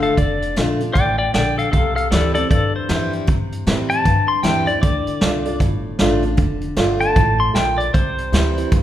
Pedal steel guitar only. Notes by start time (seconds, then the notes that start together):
0.03 A4 F5
0.18 D5
0.93 D5 G5
1.18 D5 G5
1.34 D5 G5
1.58 A4 F5
1.72 A4 F5
1.96 A4 F5
2.11 A4 D5
2.34 A4 D5
2.50 A4 D5
2.76 C5
3.90 A5
4.28 C6
4.43 G5
4.67 D5
4.82 D5
7.00 A5
7.40 C6
7.55 G5
7.78 D5
7.94 C5